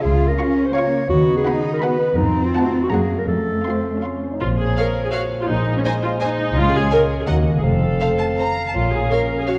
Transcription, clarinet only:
0.02 G#4
0.28 A#4
0.66 C5
0.74 C#5
1.10 F#4
1.37 G#4
1.74 A#4
1.82 B4
2.17 D#4
2.46 F4
2.83 F#4
2.91 G#4
3.19 A#4
3.28 A4
4.41 C#5
5.49 C5
6.56 C#5
7.27 D#5
7.63 F5

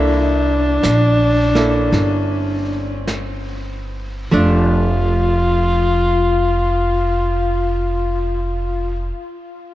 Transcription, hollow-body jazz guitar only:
Already playing: A#3 E4 A4
1.55 A#3 E4 A4
4.31 F3 A3 D4

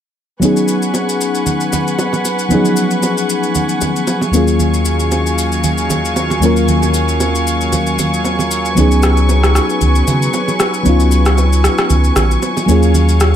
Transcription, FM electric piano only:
0.40 F#3 B3 C#4
0.44 D#4 G#4
2.48 F3 B3 C#4
2.53 F#3 D#4 G#4
4.31 D#2 F#3 A#3 C#4
4.36 F4 G#4
6.40 D#2 F#3 A#3 C#4
6.44 F4 A#4
8.75 F3 B3 C#4
8.79 F#3 D#4 G#4
10.83 F#3 B3 C#4
10.87 D#4 F4
12.66 F#3 A#3 C#4 F4
12.71 G#4

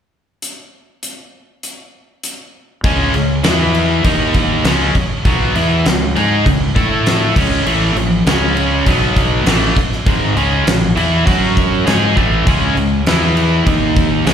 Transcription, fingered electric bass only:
2.84 C#2
3.14 C#2
3.44 E2
4.05 D#2
4.64 C#2
4.95 muted fingered electric bass stroke
5.25 B1
5.56 E2
5.86 C#2
6.16 G#2
6.46 C#2
6.76 A2
7.36 C#2
7.66 A1
7.95 A1
8.26 C#2
8.87 B1
9.46 A1
9.76 muted fingered electric bass stroke
10.06 G#1
10.36 C#2
10.67 A1
10.97 E2
11.27 F#2
11.87 G#2
12.17 A1
12.47 C#2
12.76 C#2
13.07 E2
13.66 D#2
14.26 C#2

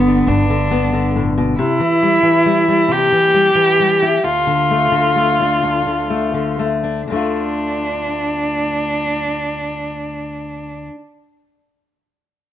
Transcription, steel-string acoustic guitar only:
Already playing: G2 D3 B3
0.08 D4
0.28 G2
0.50 D3
0.71 B3
0.93 D3
1.15 A2
1.38 B2
1.59 C3
1.80 E3
2.03 G3
2.23 E3
2.46 G3
2.68 G3
2.88 C3
3.12 E3
3.34 G3
3.55 E3
3.80 G3
4.02 E4
4.24 D2
4.47 D3
4.71 A3
4.92 D3
5.16 A3
5.40 D4
5.63 D2
5.86 D3
6.10 A3
6.34 D3
6.59 A3
6.83 D4
7.08 D2 D3
7.12 A3 D4 F4

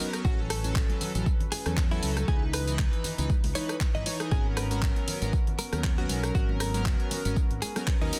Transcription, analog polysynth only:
0.00 F#3 B3 C#4 A#4
0.25 F#3 C#4 A4
0.64 F#3 C#4 A4
1.15 F#3 C#4 A4
1.66 F#3 C#4 A4
1.91 F#3 C#4 A4
2.03 F#3 C#4 A4
2.28 E3 D#4 B4
2.68 E3 D#4 B4
3.18 E3 D#4 B4
3.55 E3 D#4 B4
3.95 E3 D#4 B4
4.06 E3 D#4 C#5
4.20 E3 D#4 G#4
4.31 F#3 B3 C#4 A#4
4.71 F#3 B3 C#4 A#4
5.22 F#3 B3 C#4 A#4
5.73 F#3 B3 C#4 A#4
5.98 F#3 B3 C#4 A#4
6.09 F#3 B3 C#4 A#4
6.35 F#3 B3 C#4 A#4
6.74 F#3 B3 C#4 A#4
7.25 F#3 B3 C#4 A#4
7.76 F#3 B3 C#4 A#4
8.01 F#3 B3 C#4 A#4
8.13 F#3 B3 C#4 A#4

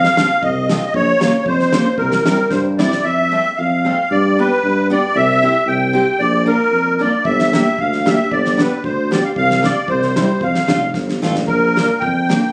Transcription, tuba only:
0.43 C2
0.94 A#1
1.46 F2
1.98 C2
2.51 G2
3.04 F2
3.58 F2
4.11 G2
4.64 G2
5.15 C2
5.66 C2
6.19 A#1
6.71 F2
7.25 G1
7.79 D2
8.31 G1
8.84 D2
9.36 C2
9.88 C2
10.41 F2
10.69 F1
10.95 G1
11.23 A1
11.48 A#1
12.02 F2

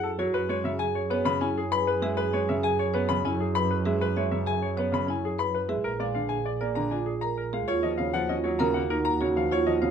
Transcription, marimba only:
0.19 F#4
0.80 G#4
1.11 C#5
1.41 E4
1.72 B4
2.02 G#4
2.63 G#4
2.94 C#5
3.25 E4
3.56 B4
3.85 G#4
4.16 E5
4.47 G#4
4.77 C#5
5.08 E4
5.39 B4
5.69 G#4
6.00 F5
6.30 G#4
6.61 D5
6.92 F4
7.23 A#4
7.53 G#4
7.68 F4
7.99 C#5
8.29 F4
8.60 A#4
8.90 D#4
9.21 F#4
9.52 F4
9.82 C#5

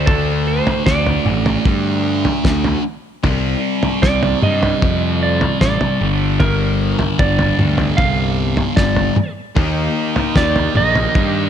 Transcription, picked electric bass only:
Already playing: D2
0.87 D2
1.25 A1
1.65 G2
2.44 D2
3.24 C2
4.03 C2
4.43 G2
4.83 F2
5.61 A1
6.01 G1
7.20 G1
7.59 D2
7.98 C2
8.77 G1
9.56 D#2
10.36 D#2
10.74 A#1
11.15 G2

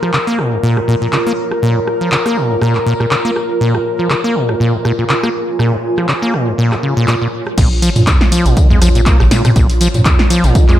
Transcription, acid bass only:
0.03 F3
0.14 C#3
0.27 A#3
0.39 A#2
0.52 G#2
0.63 A#2
0.77 G#2
0.88 A#2
1.02 A#2
1.13 C#3
1.27 A#3
1.62 A#2
1.76 G#2
2.01 F3
2.12 C#3
2.26 A#3
2.37 A#2
2.50 G#2
2.62 A#2
2.75 G#2
2.86 A#2
3.00 A#2
3.11 C#3
3.25 A#3
3.61 A#2
3.74 G#2
3.99 F3
4.10 C#3
4.24 A#3
4.35 A#2
4.49 G#2
4.60 A#2
4.74 G#2
4.85 A#2
4.99 A#2
5.10 C#3
5.23 A#3
5.59 A#2
5.73 G#2
5.98 F3
6.09 C#3
6.22 A#3
6.34 A#2
6.47 G#2
6.58 A#2
6.72 G#2
6.83 C#3
6.97 A#2
7.08 A#2
7.22 A#2
7.58 A#2
7.82 F3
8.07 D#3
8.32 F3
8.46 A#2
8.57 D#3
8.70 G#3
8.82 F3
8.95 A#2
9.06 A#3
9.20 A#2
9.31 A#2
9.45 C3
9.56 A#2
9.81 F3
10.06 D#3
10.30 F3
10.44 A#2
10.55 D#3
10.69 G#3

